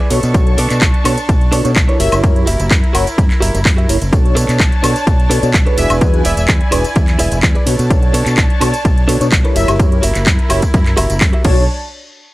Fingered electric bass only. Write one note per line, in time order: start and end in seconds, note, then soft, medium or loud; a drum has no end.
0.11 0.21 B2 medium
0.23 0.33 B2 loud
0.35 0.54 B1 loud
0.58 0.68 B2 medium
0.71 0.80 B2 loud
0.82 0.92 B1 medium
1.05 1.15 B2 medium
1.29 1.49 B1 medium
1.52 1.63 B2 medium
1.65 1.74 B2 loud
1.76 1.86 B1 medium
2.00 2.10 F#1 medium
2.12 2.22 F#1 loud
2.23 2.43 F#2 loud
2.47 2.57 F#1 medium
2.60 2.69 F#1 medium
2.71 2.81 F#2 medium
2.95 3.05 F#1 medium
3.18 3.28 F#2 medium
3.31 muted fingered electric bass stroke soft
3.42 3.52 F#1 medium
3.54 3.63 F#1 loud
3.65 3.85 F#2 medium
3.89 3.99 F#1 medium
4.02 4.11 F#1 medium
4.13 4.32 B1 loud
4.36 4.46 B2 loud
4.49 4.58 B2 medium
4.60 4.70 B1 medium
4.83 4.93 B2 medium
5.07 5.27 B1 medium
5.31 5.41 B2 medium
5.43 5.52 B2 loud
5.54 5.64 B1 medium
5.78 5.88 E1 medium
5.90 5.99 E1 loud
6.01 6.21 E2 loud
6.25 6.35 E1 loud
6.37 6.46 E1 loud
6.49 6.59 E2 loud
6.72 6.82 E1 medium
6.96 7.16 E2 medium
7.19 7.30 E1 medium
7.32 7.41 E1 loud
7.43 7.53 E2 loud
7.67 7.77 B2 medium
7.79 7.88 B2 loud
7.91 8.10 B1 loud
8.14 8.24 B2 loud
8.26 8.36 B2 loud
8.38 8.48 B1 loud
8.61 8.71 B2 medium
8.85 9.05 B1 loud
9.08 9.19 B2 medium
9.21 9.30 B2 loud
9.32 9.42 B1 loud
9.56 9.66 F#1 medium
9.68 9.77 F#1 loud
9.80 9.99 F#2 loud
10.03 10.13 F#1 loud
10.16 10.25 F#1 loud
10.27 10.37 F#2 loud
10.50 10.60 F#1 medium
10.74 10.94 F#2 medium
10.98 11.08 F#1 medium
11.10 11.19 F#1 loud
11.21 11.31 F#2 loud
11.45 11.67 B1 loud